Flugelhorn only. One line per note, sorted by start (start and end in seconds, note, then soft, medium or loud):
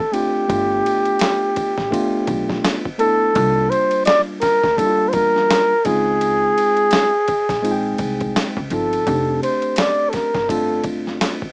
0.00 0.14 A4 medium
0.13 2.74 G4 medium
2.99 3.71 A4 loud
3.70 4.05 C5 medium
4.06 4.22 D5 loud
4.41 4.79 A#4 medium
4.78 5.10 A4 medium
5.09 5.15 C5 medium
5.13 5.86 A#4 loud
5.85 8.45 G#4 loud
8.70 9.38 A4 medium
9.43 9.80 C5 medium
9.79 10.11 D5 medium
10.10 10.16 A4 medium
10.14 10.51 A#4 medium
10.49 10.85 A4 medium